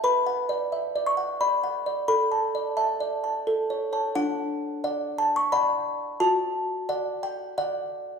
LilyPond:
\new Staff \with { instrumentName = "Music box" } { \time 3/4 \key d \major \tempo 4 = 88 << { b''4. cis'''8 b''4 | b''4 a''4 r4 | fis''4. a''16 cis'''16 b''4 | a''4. g''8 fis''4 | } \\ { \tuplet 3/2 { b'8 fis''8 d''8 e''8 d''8 fis''8 d''8 fis''8 d''8 } | \tuplet 3/2 { a'8 a''8 d''8 e''8 d''8 a''8 a'8 cis''8 <cis'' a''>8 } | d'4 <d'' fis''>4 <d'' fis''>4 | fis'4 <d'' fis''>4 d''4 | } >> }